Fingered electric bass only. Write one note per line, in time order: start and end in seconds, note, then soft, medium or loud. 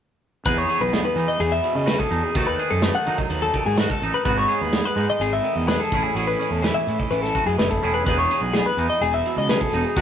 0.46 0.64 E2 medium
0.80 0.99 B1 medium
1.16 1.25 E3 medium
1.39 1.58 E2 medium
1.75 1.94 C#3 medium
2.11 2.20 E2 medium
2.35 2.53 D#2 medium
2.71 2.89 F#2 medium
3.07 3.16 D#3 medium
3.30 3.49 D#2 medium
3.66 3.84 G#2 medium
4.02 4.11 A1 medium
4.25 4.44 G#1 medium
4.61 4.79 D#2 medium
4.96 5.05 G#2 medium
5.19 5.38 G#1 medium
5.55 5.74 E2 medium
5.92 6.01 A1 medium
6.15 6.33 A1 medium
6.50 6.69 E2 medium
6.87 6.96 A2 medium
7.11 7.29 A1 medium
7.46 7.55 F#2 medium
7.58 7.79 F#1 medium
7.82 8.04 E1 medium
8.06 8.24 E1 medium
8.41 8.60 B1 medium
8.77 8.86 E2 medium
9.01 9.19 E1 medium
9.36 9.55 C#2 medium
9.72 9.82 E1 loud
9.96 10.01 D#2 medium